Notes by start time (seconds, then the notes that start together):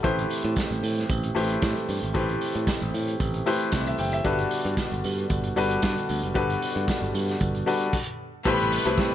0.03 A1 E3 A3 C4 E4 G4 B4 C5, kick, closed hi-hat
0.19 closed hi-hat
0.30 open hi-hat, tambourine
0.44 A2, closed hi-hat
0.56 kick, snare, tambourine
0.71 A1, closed hi-hat
0.83 A2, open hi-hat, tambourine
0.98 snare, closed hi-hat
1.09 A1, kick, closed hi-hat, tambourine
1.23 closed hi-hat
1.35 A1 A3 E4 G4 B4 C5, open hi-hat, tambourine
1.51 closed hi-hat
1.62 A2, kick, snare, tambourine
1.77 closed hi-hat
1.89 G2, open hi-hat, tambourine
2.03 G#1, closed hi-hat
2.14 A1 A3 E4 G4 B4 C5, kick, closed hi-hat, tambourine
2.29 closed hi-hat
2.41 open hi-hat, tambourine
2.55 A2, closed hi-hat
2.67 kick, snare, tambourine
2.82 A1, closed hi-hat
2.94 A2, open hi-hat, tambourine
3.08 closed hi-hat
3.20 A1, kick, closed hi-hat, tambourine
3.34 closed hi-hat
3.46 A3 E4 G4 B4 C5, open hi-hat, tambourine
3.61 closed hi-hat
3.72 C2, kick, snare, tambourine
3.86 E5, closed hi-hat
3.98 F#1 G5, open hi-hat, tambourine
4.12 E5, closed hi-hat
4.24 G1 D3 G3 B3 D4 F#4 A4 B4, kick, closed hi-hat, tambourine
4.39 closed hi-hat
4.51 open hi-hat, tambourine
4.65 G2, closed hi-hat
4.77 kick, snare, tambourine
4.91 G1, closed hi-hat
5.04 G2, open hi-hat, tambourine
5.18 closed hi-hat
5.30 G1, kick, closed hi-hat, tambourine
5.44 closed hi-hat
5.56 G1 G3 D4 F#4 A4 B4, open hi-hat, tambourine
5.71 closed hi-hat
5.82 G2, kick, snare, tambourine
5.97 closed hi-hat
6.09 D2, open hi-hat, tambourine
6.23 F#1, closed hi-hat
6.34 G1 G3 D4 F#4 A4 B4, kick, closed hi-hat
6.50 closed hi-hat
6.62 open hi-hat, tambourine
6.76 G2, closed hi-hat
6.88 kick, snare, tambourine
7.02 G1, closed hi-hat
7.14 G2, open hi-hat, tambourine
7.29 snare, closed hi-hat
7.40 G1, kick, closed hi-hat, tambourine
7.55 closed hi-hat
7.66 G3 D4 F#4 A4 B4, open hi-hat
7.82 closed hi-hat
7.93 kick, crash
8.45 A1 C3 G3 A3 B3 E4 G4 B4 C5, kick, closed hi-hat
8.60 closed hi-hat
8.72 open hi-hat
8.85 C2 A3 C4 E4 G4 B4, closed hi-hat
8.98 kick, snare